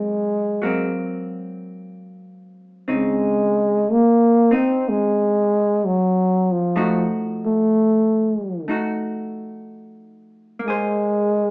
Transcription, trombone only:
0.00 0.92 G#3 medium
2.95 3.93 G#3 medium
3.92 4.56 A#3 medium
4.55 4.91 C4 medium
4.89 5.87 G#3 medium
5.85 6.54 F#3 medium
6.52 7.09 F3 medium
7.45 8.67 A3 medium
10.65 11.51 G#3 medium

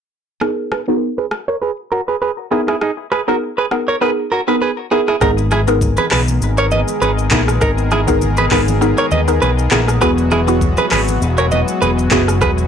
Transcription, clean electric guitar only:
0.42 0.51 D#4 medium
0.42 0.50 G#4 medium
0.72 0.81 G#4 medium
0.72 0.80 B4 medium
0.88 0.96 F#4 medium
0.88 0.95 A#4 medium
1.18 1.26 G#4 medium
1.18 1.25 B4 medium
1.48 1.56 A#4 medium
1.48 1.55 C#5 medium
1.62 1.71 G#4 medium
1.62 1.70 B4 medium
1.92 2.01 F#4 medium
1.92 2.00 A#4 medium
2.08 2.16 G#4 medium
2.08 2.15 B4 medium
2.22 2.31 G#4 medium
2.22 2.30 B4 medium
2.52 2.61 E4 medium
2.52 2.60 G#4 medium
2.68 2.76 E4 medium
2.68 2.75 G#4 medium
2.82 2.91 D#4 medium
2.82 2.90 G#4 medium
3.12 3.21 G#4 medium
3.12 3.20 B4 medium
3.28 3.36 F#4 medium
3.28 3.35 A#4 medium
3.58 3.66 G#4 medium
3.58 3.65 B4 medium
3.88 3.96 A#4 medium
3.88 3.95 C#5 medium
4.02 4.11 G#4 medium
4.02 4.10 B4 medium
4.32 4.41 F#4 medium
4.32 4.40 A#4 medium
4.48 4.55 G#4 medium
4.48 4.55 B4 medium
4.62 4.71 G#4 medium
4.62 4.70 B4 medium
4.92 5.01 E4 medium
4.92 5.00 G#4 medium
5.08 5.16 E4 medium
5.08 5.15 G#4 medium
5.22 5.31 D#4 medium
5.22 5.30 A#4 loud
5.52 5.61 E4 medium
5.52 5.60 G#4 medium
5.98 6.06 G#4 medium
5.98 6.05 B4 medium
6.12 6.21 G#4 medium
6.12 6.20 B4 medium
6.58 6.66 A#4 medium
6.58 6.65 C#5 medium
6.72 6.81 B4 medium
6.72 6.80 D#5 medium
7.02 7.11 G#4 medium
7.02 7.10 B4 medium
7.32 7.41 E4 medium
7.32 7.40 G#4 medium
7.62 7.71 D#4 medium
7.62 7.70 A#4 loud
7.92 8.01 E4 medium
7.92 8.00 G#4 medium
8.38 8.46 G#4 medium
8.38 8.45 B4 medium
8.52 8.61 G#4 medium
8.52 8.60 B4 medium
8.98 9.06 A#4 medium
8.98 9.05 C#5 medium
9.12 9.21 B4 medium
9.12 9.20 D#5 medium
9.42 9.51 G#4 medium
9.42 9.50 B4 medium
9.72 9.81 E4 medium
9.72 9.80 G#4 medium
10.02 10.11 G#4 medium
10.02 10.10 B4 loud
10.32 10.41 E4 medium
10.32 10.40 G#4 medium
10.78 10.86 G#4 medium
10.78 10.85 B4 medium
10.92 11.01 G#4 medium
10.92 11.00 B4 medium
11.38 11.46 A#4 medium
11.38 11.45 C#5 medium
11.52 11.61 B4 medium
11.52 11.60 D#5 medium
11.82 11.91 G#4 medium
11.82 11.90 B4 medium
12.12 12.21 E4 medium
12.12 12.20 G#4 medium
12.42 12.51 G#4 medium
12.42 12.50 B4 loud

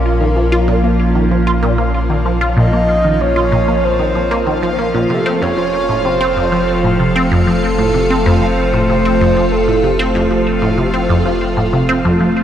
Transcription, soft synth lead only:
2.58 3.13 D#5 loud
3.13 3.23 D#5 medium
3.21 3.86 C#5 loud
3.84 4.79 C5 medium
5.10 5.44 A4 medium
5.42 6.07 C#5 loud
6.05 7.31 C5 loud
7.63 8.28 A4 loud
8.26 8.89 C5 loud
8.89 9.53 C5 loud
9.52 9.99 A4 medium

